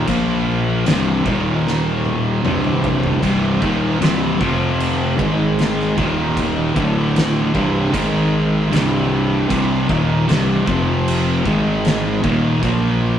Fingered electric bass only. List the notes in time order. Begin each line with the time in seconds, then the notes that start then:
0.07 A#1
0.87 C1
1.26 D#1
2.44 C1
3.22 C1
3.62 D#1
4.01 C1
4.41 F1
5.19 G#1
5.98 D#1
6.76 D1
7.55 C1
7.94 G#1
8.72 C1
9.50 C1
9.89 D#1
10.28 C1
10.67 F1
11.46 G#1
12.24 D#1
12.62 A#1